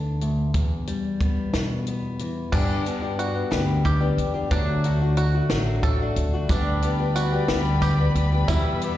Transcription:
0.00 0.20 D2 medium
0.00 0.54 D2 medium
0.00 0.55 D3 medium
0.00 0.87 B3 soft
0.00 0.51 D4 medium
0.21 0.54 D2 medium
0.21 closed hi-hat medium
0.54 0.84 E2 medium
0.54 2.49 E2 medium
0.54 kick medium
0.54 closed hi-hat medium
0.87 4.52 G3 medium
0.87 closed hi-hat medium
1.21 1.87 B3 soft
1.21 kick medium
1.21 closed hi-hat medium
1.53 2.41 E2 medium
1.53 2.20 B2 medium
1.53 snare medium
1.53 closed hi-hat medium
1.87 4.52 B3 medium
1.87 closed hi-hat medium
2.19 2.49 E3 soft
2.19 closed hi-hat soft
2.52 2.86 G2 medium
2.52 3.40 G2 medium
2.52 2.86 D3 medium
2.52 2.84 G3 medium
2.52 2.85 B3 medium
2.52 3.18 D4 medium
2.52 2.85 D4 medium
2.52 2.86 G4 medium
2.52 kick medium
2.52 crash medium
2.85 3.02 G3 medium
2.85 3.02 B3 medium
2.85 3.01 D4 medium
2.85 3.01 G4 medium
2.85 closed hi-hat medium
3.02 3.35 G3 soft
3.02 3.34 B3 soft
3.02 3.34 D4 soft
3.02 3.33 G4 medium
3.19 3.84 F#4 medium
3.19 closed hi-hat medium
3.34 3.50 G3 soft
3.34 3.50 B3 soft
3.34 3.50 D4 soft
3.34 3.51 G4 soft
3.51 4.10 D2 medium
3.51 3.85 G2 medium
3.51 3.85 D3 medium
3.51 3.83 G3 medium
3.51 3.84 B3 medium
3.51 3.84 D4 medium
3.51 3.85 G4 medium
3.51 snare medium
3.51 closed hi-hat medium
3.84 4.01 G3 medium
3.84 4.00 B3 medium
3.84 3.99 D4 medium
3.84 4.50 G4 medium
3.84 3.99 G4 medium
3.84 kick medium
3.84 closed hi-hat medium
4.00 4.35 G3 soft
4.00 4.34 B3 soft
4.00 4.34 D4 medium
4.00 4.33 G4 medium
4.18 4.47 E2 medium
4.18 closed hi-hat medium
4.34 4.50 G3 soft
4.34 4.51 B3 soft
4.34 4.50 D4 soft
4.34 4.51 G4 medium
4.51 5.39 D2 medium
4.51 4.84 D3 medium
4.51 4.83 F#3 medium
4.51 4.83 A3 medium
4.51 4.84 D4 medium
4.51 5.16 D4 medium
4.51 4.85 F#4 medium
4.51 kick loud
4.51 closed hi-hat medium
4.84 5.01 F#3 medium
4.84 5.01 A3 medium
4.84 5.01 D4 medium
4.84 5.01 F#4 medium
4.84 closed hi-hat medium
5.02 5.36 A3 soft
5.02 5.35 D4 soft
5.02 5.33 F#4 medium
5.17 5.82 F#4 medium
5.17 closed hi-hat medium
5.35 5.50 A3 soft
5.35 5.50 D4 soft
5.35 5.51 F#4 soft
5.49 6.08 A1 medium
5.49 5.84 D3 medium
5.49 5.83 F#3 medium
5.49 5.84 A3 medium
5.49 5.84 D4 medium
5.49 5.84 F#4 medium
5.49 snare loud
5.49 closed hi-hat medium
5.83 6.01 F#3 medium
5.83 6.01 A3 medium
5.83 6.01 D4 medium
5.83 6.00 F#4 medium
5.83 6.48 A4 medium
5.83 kick medium
5.83 closed hi-hat medium
6.01 6.34 A3 soft
6.01 6.33 D4 medium
6.01 6.32 F#4 medium
6.16 6.46 D2 medium
6.16 closed hi-hat medium
6.34 6.49 A3 soft
6.34 6.50 D4 soft
6.34 6.50 F#4 medium
6.49 7.37 D2 medium
6.49 6.81 D3 medium
6.49 8.46 G3 medium
6.49 6.81 G3 medium
6.49 6.82 B3 medium
6.49 7.15 D4 medium
6.49 6.83 G4 medium
6.49 8.97 B4 medium
6.49 8.46 D5 medium
6.49 8.97 B5 medium
6.49 kick loud
6.49 closed hi-hat medium
6.49 tambourine medium
6.82 6.99 D3 medium
6.82 6.99 G3 medium
6.82 6.99 B3 medium
6.82 6.98 G4 medium
6.82 closed hi-hat medium
6.99 7.34 G3 soft
6.99 7.33 B3 soft
6.99 7.31 G4 medium
7.16 7.81 F#4 medium
7.16 closed hi-hat medium
7.16 tambourine medium
7.32 7.49 G3 soft
7.32 7.49 B3 soft
7.32 7.49 G4 medium
7.48 8.07 D2 loud
7.48 7.81 D3 medium
7.48 7.82 G3 medium
7.48 7.82 B3 medium
7.48 7.82 G4 medium
7.48 snare loud
7.48 closed hi-hat medium
7.48 tambourine soft
7.65 tambourine soft
7.82 7.99 D3 medium
7.82 7.99 G3 medium
7.82 7.99 B3 medium
7.82 8.47 G4 medium
7.82 7.97 G4 medium
7.82 kick medium
7.82 closed hi-hat medium
7.82 tambourine medium
7.99 8.33 G3 medium
7.99 8.32 B3 soft
7.99 8.31 G4 medium
8.15 8.45 D2 medium
8.15 closed hi-hat medium
8.32 8.49 G3 soft
8.32 8.48 B3 medium
8.32 8.49 G4 medium
8.48 8.82 E2 medium
8.48 8.97 E2 medium
8.48 8.82 B2 medium
8.48 8.81 E3 medium
8.48 8.97 G3 medium
8.48 8.82 G3 medium
8.48 8.82 B3 loud
8.48 8.97 E4 medium
8.48 8.83 G4 medium
8.48 8.97 E5 medium
8.48 kick loud
8.48 closed hi-hat medium
8.48 tambourine medium
8.82 8.97 E3 medium
8.82 8.97 G3 medium
8.82 8.97 B3 medium
8.82 8.97 G4 medium
8.82 closed hi-hat medium
8.82 tambourine soft

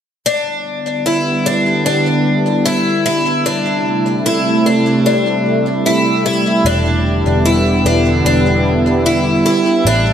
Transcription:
0.25 3.42 D3 medium
0.25 3.42 G3 medium
0.25 3.42 B3 medium
0.25 1.06 D4 medium
0.25 6.61 E4 medium
1.06 1.46 E4 medium
1.46 1.85 D4 medium
1.86 2.66 D4 medium
2.66 3.04 E4 medium
3.06 3.46 E4 medium
3.46 6.63 C3 medium
3.46 10.13 G3 medium
3.46 6.63 A3 medium
3.46 4.26 D4 medium
4.26 4.66 E4 medium
4.66 5.05 D4 medium
5.06 5.86 D4 medium
5.86 6.25 E4 medium
6.26 6.66 E4 medium
6.65 7.22 E1 medium
6.65 9.83 D3 medium
6.65 9.83 B3 medium
6.65 7.46 D4 medium
6.65 10.13 E4 medium
7.26 7.83 E1 medium
7.46 7.86 E4 medium
7.85 8.24 E1 medium
7.85 8.25 D4 medium
8.25 9.41 E1 medium
8.25 9.06 D4 medium
9.06 9.45 E4 medium
9.46 9.86 E4 medium
9.85 10.13 A1 medium
9.85 10.13 C3 medium
9.85 10.13 A3 medium
9.85 10.13 D4 medium

